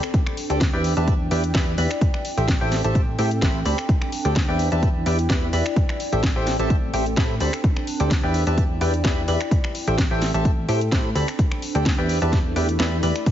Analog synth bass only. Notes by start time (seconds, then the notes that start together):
0.50 D2
0.73 E2
0.97 E2
1.31 E2
1.54 E2
1.78 E2
2.37 A1
2.61 A1
2.84 A1
3.19 A2
3.42 A1
3.66 D2
4.25 D2
4.48 E2
4.72 E2
5.06 E2
5.30 E2
5.53 E2
6.13 A1
6.36 A1
6.59 A1
6.94 A1
7.17 A2
7.41 D2
8.00 D2
8.23 E2
8.47 E2
8.81 E2
9.04 E2
9.28 E2
9.87 A1
10.11 A1
10.34 A1
10.69 A2
10.92 A2
11.15 D2
11.75 D2
11.98 E2
12.22 E2
12.56 E2
12.80 E2
13.03 E2